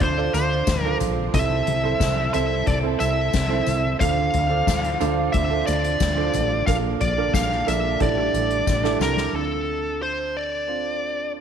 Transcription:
Already playing: string section D3 F3 C4 F4, grand piano D3 D4 F4 A4 C5
0.00 fretless electric bass D2, lead electric guitar C5, kick, closed hi-hat
0.17 grand piano D4 F4 A4 D5
0.34 fretless electric bass D2, lead electric guitar C5, closed hi-hat, tambourine
0.67 fretless electric bass D2, kick, snare, closed hi-hat, tambourine
0.81 grand piano D4 F4 A4 C5, lead electric guitar A#4
1.00 fretless electric bass A#1, closed hi-hat, floor tom, tambourine
1.34 fretless electric bass C2, string section C3 E4 A4, grand piano C3 C4 E4 A4 C5, lead electric guitar E5, kick, closed hi-hat, tambourine
1.67 fretless electric bass C2, closed hi-hat, floor tom
1.84 grand piano C4 E4 A4 C5
2.00 fretless electric bass C2, kick, snare, closed hi-hat, tambourine
2.33 fretless electric bass C2, grand piano C4 E4 A4 C5, lead electric guitar E5, closed hi-hat, tambourine
2.67 fretless electric bass C2, lead electric guitar D5, kick, closed hi-hat
2.83 grand piano C4 E4 A4 C5
3.00 fretless electric bass C2, lead electric guitar E5, closed hi-hat, tambourine
3.33 fretless electric bass C2, kick, snare, closed hi-hat, tambourine
3.50 grand piano C4 E4 A4 C5
3.66 fretless electric bass C2, closed hi-hat, floor tom, tambourine
4.00 fretless electric bass D2, string section D3 F3 F4, grand piano D3 D4 F4 A4 C5, lead electric guitar F5, kick, closed hi-hat, tambourine
4.33 fretless electric bass D2, closed hi-hat, floor tom
4.49 grand piano D4 F4 A4 C5
4.67 fretless electric bass D2, kick, snare, closed hi-hat, tambourine
4.84 closed hi-hat
5.00 fretless electric bass D2, grand piano D4 F4 A4 C5, closed hi-hat, tambourine
5.32 fretless electric bass D2, lead electric guitar E5, kick, closed hi-hat
5.50 grand piano D4 F4 A4 C5
5.67 fretless electric bass D2, lead electric guitar D5, closed hi-hat, tambourine
5.84 closed hi-hat
6.00 fretless electric bass D2, kick, snare, closed hi-hat, tambourine
6.16 grand piano D4 F4 A4 C5
6.34 fretless electric bass A1, closed hi-hat, floor tom, tambourine
6.66 fretless electric bass A#1, grand piano A#2 D4 F4 A4 A#4, string section A#3 D4, lead electric guitar F5, kick, closed hi-hat, tambourine
7.01 fretless electric bass A#1, lead electric guitar D5, closed hi-hat, floor tom, tambourine
7.17 grand piano D4 F4 A4 A#4
7.34 fretless electric bass A#1, lead electric guitar F5, kick, snare, closed hi-hat, tambourine
7.51 snare
7.66 fretless electric bass A#1, grand piano D4 F4 A4 A#4, lead electric guitar E5, closed hi-hat, tambourine
8.00 fretless electric bass A1, grand piano A2 D4 E4 G4 A4, string section G3, lead electric guitar D5, kick, closed hi-hat
8.17 grand piano D4 E4 G4 A4
8.34 fretless electric bass A1, closed hi-hat, tambourine
8.50 closed hi-hat
8.67 fretless electric bass A1, kick, snare, tambourine
8.83 grand piano D4 E4 G4 A4, snare
9.00 fretless electric bass C2, lead electric guitar A#4, snare, tambourine
9.17 snare
9.33 fretless electric bass D2, grand piano D3 C4 D4 F4 A4, lead electric guitar A4
10.02 lead electric guitar C5
10.37 lead electric guitar D5
10.67 grand piano C4 D4 F4 C5

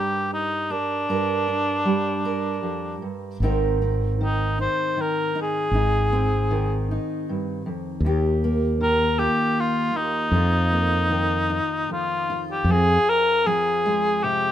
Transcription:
Already playing: steel-string acoustic guitar G2 G3 D4 A#4, cor anglais G4
0.33 cor anglais D#4
0.70 cor anglais D4, steel-string acoustic guitar A#4
1.09 steel-string acoustic guitar G2 A#4
1.48 steel-string acoustic guitar D4
1.85 steel-string acoustic guitar G3
2.25 steel-string acoustic guitar A#4
2.63 steel-string acoustic guitar F2
3.02 steel-string acoustic guitar G2
3.40 fretless electric bass G#1, steel-string acoustic guitar G#2 D#3 C4 D#4
3.44 steel-string acoustic guitar A#4
3.82 steel-string acoustic guitar C4
4.21 steel-string acoustic guitar D#3, cor anglais D#4
4.59 steel-string acoustic guitar D#4, cor anglais C5
4.97 steel-string acoustic guitar D#3
5.01 cor anglais A#4
5.35 steel-string acoustic guitar D#4
5.42 cor anglais G#4
5.71 fretless electric bass G#1, steel-string acoustic guitar G#2 D#4
6.13 steel-string acoustic guitar C4
6.51 steel-string acoustic guitar D#3
6.91 steel-string acoustic guitar D#4
7.29 steel-string acoustic guitar G2
7.66 steel-string acoustic guitar F2
8.00 fretless electric bass D#2
8.05 steel-string acoustic guitar D#2 G4
8.44 steel-string acoustic guitar A#3
8.80 steel-string acoustic guitar D#3, cor anglais A#4
9.19 steel-string acoustic guitar F4, cor anglais G4
9.60 cor anglais F4
9.95 steel-string acoustic guitar D#2, cor anglais D#4
10.31 fretless electric bass F2, steel-string acoustic guitar F2 F4
10.72 steel-string acoustic guitar A#3
11.10 steel-string acoustic guitar D#3
11.50 steel-string acoustic guitar D#4
11.89 steel-string acoustic guitar F2, cor anglais F4
12.30 steel-string acoustic guitar F4
12.51 cor anglais G4
12.64 fretless electric bass F2, steel-string acoustic guitar F2
12.69 steel-string acoustic guitar C4, cor anglais G#4
13.09 cor anglais A#4
13.46 steel-string acoustic guitar F3 C4, cor anglais G#4
13.86 steel-string acoustic guitar G#3
14.23 steel-string acoustic guitar C3, cor anglais G4

